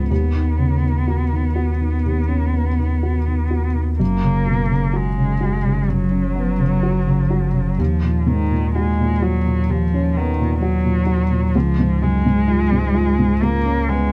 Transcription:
Already playing: sub bass C#2, felt piano C#2 G#2 B3 C#4 F4, cello F3
0.10 sub bass D#2, felt piano D#2, cello B3
0.35 felt piano D#3
0.58 felt piano C#3
0.83 felt piano D#3
1.08 felt piano F#4
1.32 felt piano D#3
1.56 felt piano F#4
1.80 felt piano D#3
2.05 felt piano D#2
2.28 felt piano C#4
2.54 felt piano B3
2.78 felt piano D#3
3.03 felt piano F#4
3.27 felt piano D#3
3.51 felt piano F#4
3.75 felt piano D#3
3.99 sub bass F#1, felt piano F#2, cello A#3
4.23 felt piano C#3
4.46 felt piano B2
4.70 felt piano C#3
4.93 cello G#3, felt piano F#4
5.17 felt piano C#3
5.41 felt piano F#4
5.64 felt piano C#3
5.88 felt piano F#2, cello F#3
6.11 felt piano C#4
6.36 felt piano B3
6.59 felt piano C#3
6.83 felt piano F#4
7.07 felt piano C#3
7.30 felt piano F#4
7.53 felt piano C#3
7.78 felt piano D#2, sub bass D#2, cello F3
8.03 felt piano A#2
8.27 felt piano G#2, cello D#3
8.51 felt piano A#2
8.75 cello G#3, felt piano F#4
9.00 felt piano A#2
9.22 cello F#3, felt piano F#4
9.46 felt piano A#2
9.69 felt piano D#2, cello F3
9.94 felt piano C#4
10.17 cello D#3, felt piano B3
10.39 felt piano A#2
10.62 cello F#3, felt piano F#4
10.84 felt piano A#2
11.06 felt piano F#4
11.30 felt piano A#2
11.55 sub bass C#2, felt piano C#2, cello F3
11.79 felt piano G#2
12.02 felt piano F#2, cello G#3
12.25 felt piano G#2
12.48 felt piano F4
12.72 felt piano G#2
12.95 felt piano F4
13.18 felt piano G#2
13.42 felt piano C#2, cello A#3
13.65 felt piano C#4
13.89 cello G#3, felt piano B3

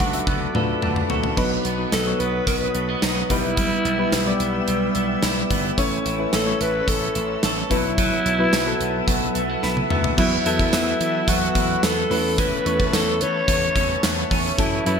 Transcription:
Already playing: clean electric guitar F#3 B3 A4, synth keys A3 D4 F#4 B4, alto saxophone F#4, ambient pad A4 F#5 B5 D6
0.00 slap bass C#2, clean electric guitar D4, synth keys F#5, kick, closed hi-hat
0.13 synth keys E5, closed hi-hat
0.27 slap bass D2, clean electric guitar B3, synth keys F#5, kick, high tom
0.54 slap bass D2, synth keys A3 D4 F4 B4, clean electric guitar A4, mid tom
0.62 synth keys F#4
0.82 slap bass D2, clean electric guitar D4, synth keys A5, mid tom
0.96 mid tom
1.10 slap bass D2, clean electric guitar A4, synth keys C#6, floor tom
1.24 floor tom
1.37 slap bass B1, synth keys F#3 B3 D#4 B4, clean electric guitar F#3, ambient pad B4 D#5 F#5 D#6, kick, crash
1.65 slap bass B1, clean electric guitar B3, closed hi-hat
1.78 synth keys F#3 B3 D#4 B4
1.92 slap bass B1, clean electric guitar F#3, alto saxophone A4, snare, closed hi-hat
2.06 synth keys F#3 B3 D#4 C#5
2.20 slap bass B1, clean electric guitar B3, alto saxophone B4, closed hi-hat
2.47 slap bass B1, clean electric guitar F#3, alto saxophone B4, kick, closed hi-hat
2.75 slap bass B1, clean electric guitar A3, closed hi-hat
2.89 clean electric guitar B3
3.02 slap bass B1, clean electric guitar D#4, snare, closed hi-hat
3.30 slap bass B1, synth keys G3 B3 E4 B4, clean electric guitar G3, alto saxophone E4, ambient pad B4 E5 G5 E6, kick, closed hi-hat
3.57 clean electric guitar G3, kick, closed hi-hat
3.85 slap bass B1, clean electric guitar B3, closed hi-hat
3.98 synth keys G3 B3 E4 B4
4.12 slap bass B1, clean electric guitar G3, snare, closed hi-hat
4.26 synth keys G3 B3 E4 D5
4.40 slap bass B1, clean electric guitar B3, closed hi-hat
4.67 slap bass B1, clean electric guitar G3, closed hi-hat
4.95 slap bass B1, clean electric guitar B3, closed hi-hat
5.23 slap bass B1, clean electric guitar E4, snare, closed hi-hat
5.50 slap bass G1, clean electric guitar B3, kick, closed hi-hat
5.77 slap bass A1, synth keys A3 C#4 E4 C#5, clean electric guitar C#4, ambient pad C#5 A5 E6, kick, closed hi-hat
6.05 slap bass A1, clean electric guitar E4, closed hi-hat
6.19 synth keys A3 C#4 E4 B4
6.33 slap bass A1, clean electric guitar C#4, alto saxophone A4, snare, closed hi-hat
6.46 synth keys A3 C#4 E4 C#5
6.60 slap bass A1, clean electric guitar E4, alto saxophone B4, closed hi-hat
6.88 slap bass A1, clean electric guitar C#4, alto saxophone A4, kick, closed hi-hat
7.15 slap bass A1, clean electric guitar E4, closed hi-hat
7.43 slap bass A1, clean electric guitar A4, snare, closed hi-hat
7.70 slap bass B1, synth keys F#3 B3 E4 B4, clean electric guitar F#3, alto saxophone E4, ambient pad B4 E5 F#5, kick, closed hi-hat
7.98 clean electric guitar F#3, kick, closed hi-hat
8.25 slap bass B1, clean electric guitar B3, closed hi-hat
8.39 synth keys F#3 B3 E4 B4
8.53 slap bass B1, clean electric guitar F#3, snare, closed hi-hat
8.66 synth keys F#3 B3 E4 A4
8.80 slap bass B1, clean electric guitar B3, closed hi-hat
9.08 slap bass B1, clean electric guitar F#3, kick, closed hi-hat
9.35 slap bass B1, clean electric guitar A3, closed hi-hat
9.49 clean electric guitar B3
9.63 slap bass B1, clean electric guitar E4, synth keys B5, snare
9.77 high tom
9.90 slap bass D2, clean electric guitar B3, synth keys E5, mid tom
10.04 floor tom
10.18 slap bass E2, synth keys F#3 B3 E4 B4, clean electric guitar F#3, alto saxophone E4, ambient pad B4 E5 F#5 E6, kick, crash
10.46 slap bass E2, synth keys F#3 B3 E4 A4, clean electric guitar B3, alto saxophone E4, closed hi-hat
10.59 kick
10.73 slap bass E2, clean electric guitar F#3, snare, closed hi-hat, tambourine
11.01 slap bass E3, clean electric guitar B3, closed hi-hat
11.28 slap bass E2, clean electric guitar F#3, alto saxophone F#4, kick, closed hi-hat
11.55 slap bass E2, clean electric guitar E4, kick, closed hi-hat
11.83 slap bass E2, clean electric guitar B3, alto saxophone A4, snare, closed hi-hat, tambourine
12.10 slap bass E2, clean electric guitar E3, synth keys A3 C#4 E4 B4, ambient pad A5 C#6, open hi-hat
12.38 clean electric guitar E3, alto saxophone B4, kick, closed hi-hat
12.66 slap bass E2, synth keys A3 C#4 E4 C#5, clean electric guitar B3, closed hi-hat
12.80 kick
12.93 slap bass E2, clean electric guitar E3, alto saxophone A4, snare, closed hi-hat, tambourine
13.21 slap bass E3, clean electric guitar B3, alto saxophone C#5, closed hi-hat
13.48 slap bass E2, clean electric guitar E3, kick, closed hi-hat
13.76 slap bass E2, clean electric guitar C#4, kick, closed hi-hat
14.03 slap bass E2, clean electric guitar B3, snare, closed hi-hat, tambourine
14.31 slap bass E2, clean electric guitar C#4, kick, open hi-hat
14.58 slap bass F#2, clean electric guitar E3, synth keys F#3 C#4 E4 A4, alto saxophone E4, ambient pad A4 F#5, kick, closed hi-hat
14.85 slap bass F#2, synth keys F#3 C#4 E4 B4, clean electric guitar A3, alto saxophone E4, closed hi-hat

